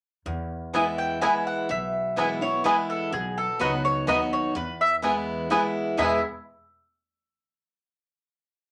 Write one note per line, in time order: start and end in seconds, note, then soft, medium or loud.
0.26 1.24 E2 medium
0.26 1.17 E2 medium
0.73 1.19 E3 medium
0.73 1.20 G#3 medium
0.73 0.83 B3 medium
0.73 0.85 B3 medium
0.73 1.20 B3 medium
0.73 0.83 E4 medium
0.73 0.86 E4 medium
0.73 1.20 E4 medium
0.73 0.84 B4 medium
0.73 0.84 G#5 loud
0.98 1.21 G5 medium
1.21 1.67 E3 medium
1.21 1.67 G#3 medium
1.21 1.31 B3 medium
1.21 1.68 B3 medium
1.21 1.33 B3 medium
1.21 1.31 E4 loud
1.21 1.68 E4 loud
1.21 1.33 E4 medium
1.21 1.31 B4 loud
1.21 1.46 G#5 medium
1.21 1.32 G#5 loud
1.47 1.69 F#5 medium
1.69 2.68 B1 medium
1.69 2.60 B2 medium
1.69 2.38 E5 medium
2.16 2.41 E3 medium
2.16 2.41 G#3 medium
2.16 2.26 B3 medium
2.16 2.29 B3 medium
2.16 2.41 B3 medium
2.16 2.26 E4 medium
2.16 2.29 E4 medium
2.16 2.40 E4 medium
2.16 2.27 B4 medium
2.16 2.27 G#5 medium
2.41 2.64 B3 soft
2.41 2.64 E4 medium
2.41 2.65 C#5 medium
2.64 3.10 E3 medium
2.64 3.10 G#3 medium
2.64 2.74 B3 medium
2.64 3.11 B3 medium
2.64 2.76 B3 medium
2.64 2.74 E4 medium
2.64 3.11 E4 medium
2.64 2.77 E4 medium
2.64 2.74 B4 medium
2.64 2.89 B4 medium
2.64 2.75 G#5 loud
2.90 3.12 A4 medium
3.12 3.45 B1 medium
3.12 4.03 B2 medium
3.12 3.37 G#4 medium
3.38 3.60 A4 medium
3.59 4.01 C#2 medium
3.59 4.05 F#3 medium
3.59 3.69 B3 medium
3.59 4.06 B3 medium
3.59 3.72 B3 medium
3.59 4.06 D#4 medium
3.59 3.72 D#4 medium
3.59 3.70 F#4 medium
3.59 4.06 F#4 medium
3.59 3.72 F#4 medium
3.59 3.84 B4 medium
3.59 3.70 D#5 loud
3.59 3.70 B5 medium
3.85 4.07 C#5 medium
4.07 4.48 D#2 medium
4.07 4.53 F#3 medium
4.07 4.17 B3 loud
4.07 4.53 B3 medium
4.07 4.19 B3 medium
4.07 4.54 D#4 medium
4.07 4.19 D#4 medium
4.07 4.17 F#4 loud
4.07 4.54 F#4 medium
4.07 4.19 F#4 medium
4.07 4.17 D#5 medium
4.07 4.32 D#5 medium
4.07 4.17 B5 loud
4.33 4.55 C#5 medium
4.55 5.53 E2 medium
4.55 5.46 E2 medium
4.55 4.80 B4 medium
4.81 4.95 E5 loud
5.02 5.48 E3 medium
5.02 5.48 G#3 medium
5.02 5.12 B3 medium
5.02 5.49 B3 medium
5.02 5.14 B3 medium
5.02 5.12 E4 medium
5.02 5.49 E4 medium
5.02 5.14 E4 medium
5.02 5.13 B4 medium
5.02 5.13 G#5 medium
5.50 5.96 E3 medium
5.50 5.96 G#3 medium
5.50 5.60 B3 medium
5.50 5.62 B3 medium
5.50 5.97 B3 medium
5.50 5.60 E4 loud
5.50 5.62 E4 medium
5.50 5.97 E4 loud
5.50 5.60 B4 loud
5.50 5.60 G#5 loud
5.97 6.18 E2 medium
5.97 6.21 E2 medium
5.97 6.18 B2 medium
5.97 6.18 E3 medium
5.97 6.21 G#3 medium
5.97 6.18 G#3 medium
5.97 6.18 B3 medium
5.97 6.22 B3 medium
5.97 6.18 E4 medium
5.97 6.19 E4 loud
5.97 6.18 B4 medium
5.97 6.21 E5 medium
5.97 6.19 G#5 medium
6.03 6.23 E4 medium
6.03 6.25 G#4 medium